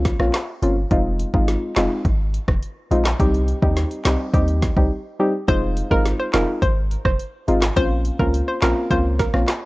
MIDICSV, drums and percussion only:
0, 0, Header, 1, 2, 480
1, 0, Start_track
1, 0, Key_signature, -4, "minor"
1, 0, Tempo, 571429
1, 764, Time_signature, 4, 2, 24, 8
1, 8109, End_track
2, 0, Start_track
2, 0, Title_t, "Drums"
2, 43, Note_on_c, 9, 38, 72
2, 44, Note_on_c, 9, 36, 96
2, 45, Note_on_c, 9, 42, 72
2, 127, Note_off_c, 9, 38, 0
2, 128, Note_off_c, 9, 36, 0
2, 129, Note_off_c, 9, 42, 0
2, 165, Note_on_c, 9, 37, 107
2, 249, Note_off_c, 9, 37, 0
2, 284, Note_on_c, 9, 42, 66
2, 285, Note_on_c, 9, 38, 113
2, 285, Note_on_c, 9, 39, 95
2, 368, Note_off_c, 9, 42, 0
2, 369, Note_off_c, 9, 38, 0
2, 369, Note_off_c, 9, 39, 0
2, 526, Note_on_c, 9, 42, 81
2, 610, Note_off_c, 9, 42, 0
2, 763, Note_on_c, 9, 42, 73
2, 764, Note_on_c, 9, 36, 118
2, 847, Note_off_c, 9, 42, 0
2, 848, Note_off_c, 9, 36, 0
2, 1003, Note_on_c, 9, 42, 78
2, 1087, Note_off_c, 9, 42, 0
2, 1124, Note_on_c, 9, 36, 93
2, 1208, Note_off_c, 9, 36, 0
2, 1244, Note_on_c, 9, 38, 67
2, 1246, Note_on_c, 9, 42, 87
2, 1328, Note_off_c, 9, 38, 0
2, 1330, Note_off_c, 9, 42, 0
2, 1481, Note_on_c, 9, 39, 102
2, 1482, Note_on_c, 9, 38, 111
2, 1482, Note_on_c, 9, 42, 59
2, 1565, Note_off_c, 9, 39, 0
2, 1566, Note_off_c, 9, 38, 0
2, 1566, Note_off_c, 9, 42, 0
2, 1722, Note_on_c, 9, 36, 98
2, 1722, Note_on_c, 9, 42, 63
2, 1806, Note_off_c, 9, 36, 0
2, 1806, Note_off_c, 9, 42, 0
2, 1966, Note_on_c, 9, 42, 71
2, 2050, Note_off_c, 9, 42, 0
2, 2083, Note_on_c, 9, 36, 99
2, 2085, Note_on_c, 9, 37, 104
2, 2167, Note_off_c, 9, 36, 0
2, 2169, Note_off_c, 9, 37, 0
2, 2205, Note_on_c, 9, 42, 67
2, 2289, Note_off_c, 9, 42, 0
2, 2448, Note_on_c, 9, 42, 82
2, 2532, Note_off_c, 9, 42, 0
2, 2565, Note_on_c, 9, 38, 111
2, 2565, Note_on_c, 9, 39, 91
2, 2649, Note_off_c, 9, 38, 0
2, 2649, Note_off_c, 9, 39, 0
2, 2685, Note_on_c, 9, 42, 70
2, 2686, Note_on_c, 9, 36, 119
2, 2769, Note_off_c, 9, 42, 0
2, 2770, Note_off_c, 9, 36, 0
2, 2808, Note_on_c, 9, 42, 47
2, 2892, Note_off_c, 9, 42, 0
2, 2924, Note_on_c, 9, 42, 76
2, 3008, Note_off_c, 9, 42, 0
2, 3045, Note_on_c, 9, 36, 93
2, 3129, Note_off_c, 9, 36, 0
2, 3164, Note_on_c, 9, 38, 66
2, 3166, Note_on_c, 9, 42, 89
2, 3248, Note_off_c, 9, 38, 0
2, 3250, Note_off_c, 9, 42, 0
2, 3284, Note_on_c, 9, 42, 49
2, 3368, Note_off_c, 9, 42, 0
2, 3404, Note_on_c, 9, 38, 117
2, 3404, Note_on_c, 9, 39, 96
2, 3404, Note_on_c, 9, 42, 61
2, 3488, Note_off_c, 9, 38, 0
2, 3488, Note_off_c, 9, 39, 0
2, 3488, Note_off_c, 9, 42, 0
2, 3642, Note_on_c, 9, 36, 95
2, 3644, Note_on_c, 9, 42, 63
2, 3726, Note_off_c, 9, 36, 0
2, 3728, Note_off_c, 9, 42, 0
2, 3762, Note_on_c, 9, 42, 52
2, 3846, Note_off_c, 9, 42, 0
2, 3884, Note_on_c, 9, 38, 70
2, 3885, Note_on_c, 9, 36, 92
2, 3887, Note_on_c, 9, 42, 69
2, 3968, Note_off_c, 9, 38, 0
2, 3969, Note_off_c, 9, 36, 0
2, 3971, Note_off_c, 9, 42, 0
2, 4004, Note_on_c, 9, 36, 98
2, 4088, Note_off_c, 9, 36, 0
2, 4606, Note_on_c, 9, 36, 123
2, 4606, Note_on_c, 9, 42, 73
2, 4690, Note_off_c, 9, 36, 0
2, 4690, Note_off_c, 9, 42, 0
2, 4845, Note_on_c, 9, 42, 78
2, 4929, Note_off_c, 9, 42, 0
2, 4965, Note_on_c, 9, 36, 97
2, 5049, Note_off_c, 9, 36, 0
2, 5086, Note_on_c, 9, 38, 69
2, 5088, Note_on_c, 9, 42, 87
2, 5170, Note_off_c, 9, 38, 0
2, 5172, Note_off_c, 9, 42, 0
2, 5322, Note_on_c, 9, 38, 117
2, 5322, Note_on_c, 9, 39, 100
2, 5322, Note_on_c, 9, 42, 60
2, 5406, Note_off_c, 9, 38, 0
2, 5406, Note_off_c, 9, 39, 0
2, 5406, Note_off_c, 9, 42, 0
2, 5562, Note_on_c, 9, 36, 102
2, 5563, Note_on_c, 9, 42, 63
2, 5646, Note_off_c, 9, 36, 0
2, 5647, Note_off_c, 9, 42, 0
2, 5806, Note_on_c, 9, 42, 70
2, 5890, Note_off_c, 9, 42, 0
2, 5923, Note_on_c, 9, 36, 101
2, 5924, Note_on_c, 9, 37, 103
2, 6007, Note_off_c, 9, 36, 0
2, 6008, Note_off_c, 9, 37, 0
2, 6043, Note_on_c, 9, 42, 67
2, 6127, Note_off_c, 9, 42, 0
2, 6284, Note_on_c, 9, 42, 82
2, 6368, Note_off_c, 9, 42, 0
2, 6401, Note_on_c, 9, 38, 117
2, 6401, Note_on_c, 9, 39, 96
2, 6485, Note_off_c, 9, 38, 0
2, 6485, Note_off_c, 9, 39, 0
2, 6522, Note_on_c, 9, 42, 76
2, 6523, Note_on_c, 9, 36, 120
2, 6606, Note_off_c, 9, 42, 0
2, 6607, Note_off_c, 9, 36, 0
2, 6761, Note_on_c, 9, 42, 74
2, 6845, Note_off_c, 9, 42, 0
2, 6883, Note_on_c, 9, 36, 93
2, 6967, Note_off_c, 9, 36, 0
2, 7006, Note_on_c, 9, 42, 88
2, 7090, Note_off_c, 9, 42, 0
2, 7242, Note_on_c, 9, 38, 118
2, 7242, Note_on_c, 9, 39, 101
2, 7242, Note_on_c, 9, 42, 62
2, 7326, Note_off_c, 9, 38, 0
2, 7326, Note_off_c, 9, 39, 0
2, 7326, Note_off_c, 9, 42, 0
2, 7481, Note_on_c, 9, 36, 98
2, 7482, Note_on_c, 9, 42, 63
2, 7565, Note_off_c, 9, 36, 0
2, 7566, Note_off_c, 9, 42, 0
2, 7723, Note_on_c, 9, 38, 72
2, 7724, Note_on_c, 9, 36, 91
2, 7725, Note_on_c, 9, 42, 70
2, 7807, Note_off_c, 9, 38, 0
2, 7808, Note_off_c, 9, 36, 0
2, 7809, Note_off_c, 9, 42, 0
2, 7843, Note_on_c, 9, 37, 106
2, 7927, Note_off_c, 9, 37, 0
2, 7962, Note_on_c, 9, 42, 69
2, 7963, Note_on_c, 9, 39, 98
2, 7964, Note_on_c, 9, 38, 119
2, 8046, Note_off_c, 9, 42, 0
2, 8047, Note_off_c, 9, 39, 0
2, 8048, Note_off_c, 9, 38, 0
2, 8109, End_track
0, 0, End_of_file